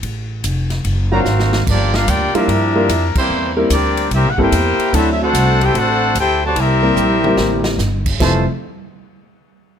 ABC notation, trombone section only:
X:1
M:4/4
L:1/8
Q:"Swing" 1/4=147
K:F
V:1 name="Trombone section"
z4 z [^A,C^F]3 | [F,B,D] [B,DF] [B,DG] [F,B,E]4 [E,G,C]- | [E,G,C] z [G,B,D]2 [G,B,E] [B,EG]3 | E [A,C^F]2 G [A,CF]2 G [C,^F,A,] |
[G,B,E]6 z2 | [F,,C,E,A,] z6 z |]